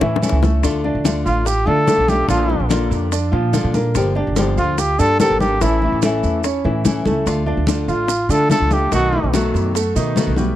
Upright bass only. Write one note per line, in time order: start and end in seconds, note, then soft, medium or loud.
0.02 0.21 A2 medium
0.32 0.62 C#2 medium
0.63 0.93 D2 medium
0.95 1.24 D2 medium
1.26 1.65 A1 medium
1.67 1.87 D3 loud
1.98 2.28 B1 medium
2.28 2.58 A#1 medium
2.60 2.90 A#1 medium
2.91 3.31 F2 medium
3.33 3.53 A#2 medium
3.64 3.94 A#2 medium
3.95 4.25 G1 medium
4.27 4.56 G1 medium
4.58 4.97 D2 medium
5.00 5.19 G2 medium
5.30 5.60 G#1 medium
5.61 5.91 A1 medium
5.92 6.22 A1 medium
6.24 6.63 E2 medium
6.65 6.84 A2 medium
6.85 7.04 A1 medium
7.06 7.25 C#2 medium
7.26 7.56 D2 medium
7.57 7.87 D2 medium
7.88 8.28 A1 medium
8.29 8.49 D3 medium
8.60 8.90 C#2 medium
8.92 9.22 B1 medium
9.23 9.53 B1 medium
9.54 9.94 F#2 medium
9.96 10.16 B2 medium
10.27 10.56 B1 medium